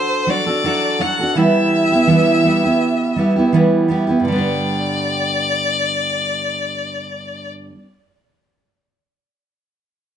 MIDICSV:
0, 0, Header, 1, 3, 480
1, 0, Start_track
1, 0, Key_signature, 1, "major"
1, 0, Tempo, 723764
1, 898, Time_signature, 4, 2, 24, 8
1, 6744, End_track
2, 0, Start_track
2, 0, Title_t, "Violin"
2, 0, Program_c, 0, 40
2, 0, Note_on_c, 0, 72, 81
2, 199, Note_on_c, 0, 74, 83
2, 209, Note_off_c, 0, 72, 0
2, 674, Note_on_c, 0, 78, 75
2, 683, Note_off_c, 0, 74, 0
2, 910, Note_on_c, 0, 76, 88
2, 920, Note_off_c, 0, 78, 0
2, 2343, Note_off_c, 0, 76, 0
2, 2827, Note_on_c, 0, 74, 75
2, 4971, Note_off_c, 0, 74, 0
2, 6744, End_track
3, 0, Start_track
3, 0, Title_t, "Steel-string acoustic guitar"
3, 0, Program_c, 1, 25
3, 0, Note_on_c, 1, 62, 37
3, 0, Note_on_c, 1, 66, 39
3, 0, Note_on_c, 1, 69, 45
3, 175, Note_off_c, 1, 69, 0
3, 178, Note_off_c, 1, 62, 0
3, 178, Note_on_c, 1, 54, 53
3, 182, Note_off_c, 1, 66, 0
3, 186, Note_on_c, 1, 62, 53
3, 196, Note_on_c, 1, 66, 54
3, 197, Note_on_c, 1, 69, 58
3, 300, Note_off_c, 1, 69, 0
3, 308, Note_on_c, 1, 69, 43
3, 310, Note_off_c, 1, 54, 0
3, 311, Note_off_c, 1, 66, 0
3, 314, Note_off_c, 1, 62, 0
3, 319, Note_on_c, 1, 66, 41
3, 330, Note_on_c, 1, 62, 35
3, 417, Note_off_c, 1, 69, 0
3, 423, Note_off_c, 1, 62, 0
3, 423, Note_off_c, 1, 66, 0
3, 425, Note_on_c, 1, 54, 61
3, 431, Note_on_c, 1, 62, 68
3, 434, Note_on_c, 1, 66, 67
3, 439, Note_on_c, 1, 69, 70
3, 652, Note_off_c, 1, 54, 0
3, 658, Note_off_c, 1, 62, 0
3, 660, Note_on_c, 1, 54, 52
3, 666, Note_off_c, 1, 66, 0
3, 666, Note_on_c, 1, 62, 54
3, 668, Note_off_c, 1, 69, 0
3, 675, Note_on_c, 1, 66, 54
3, 683, Note_on_c, 1, 69, 56
3, 784, Note_off_c, 1, 69, 0
3, 791, Note_off_c, 1, 54, 0
3, 791, Note_on_c, 1, 69, 50
3, 794, Note_off_c, 1, 62, 0
3, 795, Note_off_c, 1, 66, 0
3, 803, Note_on_c, 1, 66, 48
3, 816, Note_on_c, 1, 62, 38
3, 897, Note_on_c, 1, 52, 64
3, 899, Note_off_c, 1, 69, 0
3, 905, Note_off_c, 1, 66, 0
3, 907, Note_off_c, 1, 62, 0
3, 907, Note_on_c, 1, 55, 65
3, 910, Note_on_c, 1, 59, 66
3, 912, Note_on_c, 1, 64, 66
3, 915, Note_on_c, 1, 67, 72
3, 1263, Note_off_c, 1, 67, 0
3, 1269, Note_off_c, 1, 52, 0
3, 1271, Note_on_c, 1, 67, 46
3, 1274, Note_off_c, 1, 55, 0
3, 1276, Note_off_c, 1, 59, 0
3, 1277, Note_off_c, 1, 64, 0
3, 1284, Note_on_c, 1, 64, 39
3, 1293, Note_on_c, 1, 59, 35
3, 1373, Note_on_c, 1, 52, 70
3, 1374, Note_off_c, 1, 59, 0
3, 1378, Note_off_c, 1, 67, 0
3, 1378, Note_on_c, 1, 55, 59
3, 1381, Note_off_c, 1, 64, 0
3, 1382, Note_on_c, 1, 59, 64
3, 1389, Note_on_c, 1, 64, 72
3, 1389, Note_on_c, 1, 67, 63
3, 1607, Note_off_c, 1, 55, 0
3, 1614, Note_on_c, 1, 55, 51
3, 1615, Note_off_c, 1, 52, 0
3, 1619, Note_off_c, 1, 59, 0
3, 1621, Note_off_c, 1, 64, 0
3, 1623, Note_off_c, 1, 67, 0
3, 1626, Note_on_c, 1, 59, 53
3, 1629, Note_on_c, 1, 64, 57
3, 1635, Note_on_c, 1, 67, 58
3, 1736, Note_off_c, 1, 67, 0
3, 1744, Note_on_c, 1, 67, 42
3, 1748, Note_off_c, 1, 55, 0
3, 1752, Note_off_c, 1, 64, 0
3, 1754, Note_off_c, 1, 59, 0
3, 1760, Note_on_c, 1, 64, 42
3, 1767, Note_on_c, 1, 59, 38
3, 2095, Note_off_c, 1, 67, 0
3, 2097, Note_on_c, 1, 55, 58
3, 2102, Note_off_c, 1, 59, 0
3, 2102, Note_off_c, 1, 64, 0
3, 2110, Note_on_c, 1, 59, 55
3, 2114, Note_on_c, 1, 64, 52
3, 2117, Note_on_c, 1, 67, 58
3, 2221, Note_off_c, 1, 67, 0
3, 2228, Note_on_c, 1, 67, 43
3, 2229, Note_off_c, 1, 55, 0
3, 2236, Note_off_c, 1, 59, 0
3, 2237, Note_off_c, 1, 64, 0
3, 2244, Note_on_c, 1, 64, 38
3, 2251, Note_on_c, 1, 59, 40
3, 2337, Note_off_c, 1, 67, 0
3, 2338, Note_on_c, 1, 52, 65
3, 2342, Note_off_c, 1, 59, 0
3, 2344, Note_off_c, 1, 64, 0
3, 2347, Note_on_c, 1, 55, 68
3, 2350, Note_on_c, 1, 59, 75
3, 2351, Note_on_c, 1, 64, 68
3, 2357, Note_on_c, 1, 67, 71
3, 2567, Note_off_c, 1, 55, 0
3, 2575, Note_on_c, 1, 55, 54
3, 2576, Note_off_c, 1, 59, 0
3, 2577, Note_off_c, 1, 52, 0
3, 2584, Note_off_c, 1, 64, 0
3, 2584, Note_on_c, 1, 59, 58
3, 2587, Note_off_c, 1, 67, 0
3, 2591, Note_on_c, 1, 64, 57
3, 2596, Note_on_c, 1, 67, 68
3, 2690, Note_off_c, 1, 67, 0
3, 2698, Note_on_c, 1, 67, 45
3, 2703, Note_off_c, 1, 64, 0
3, 2708, Note_off_c, 1, 55, 0
3, 2711, Note_on_c, 1, 64, 42
3, 2712, Note_off_c, 1, 59, 0
3, 2720, Note_on_c, 1, 59, 43
3, 2783, Note_on_c, 1, 43, 56
3, 2811, Note_off_c, 1, 67, 0
3, 2818, Note_off_c, 1, 64, 0
3, 2818, Note_on_c, 1, 50, 63
3, 2822, Note_off_c, 1, 59, 0
3, 2839, Note_on_c, 1, 55, 70
3, 2867, Note_on_c, 1, 59, 65
3, 2889, Note_on_c, 1, 62, 66
3, 2907, Note_on_c, 1, 67, 64
3, 5104, Note_off_c, 1, 43, 0
3, 5139, Note_off_c, 1, 50, 0
3, 5160, Note_off_c, 1, 55, 0
3, 5188, Note_off_c, 1, 59, 0
3, 5210, Note_off_c, 1, 62, 0
3, 5228, Note_off_c, 1, 67, 0
3, 6744, End_track
0, 0, End_of_file